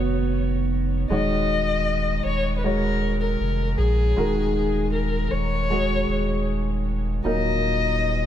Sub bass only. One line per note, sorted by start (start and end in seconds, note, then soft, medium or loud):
0.00 1.06 F1 medium
1.10 2.21 D#1 medium
2.25 3.37 D#1 medium
3.41 3.77 F1 medium
3.79 4.15 A#1 medium
4.18 5.29 D#1 medium
5.32 6.06 D#1 medium
6.09 7.21 D#1 medium
7.25 8.26 D#1 medium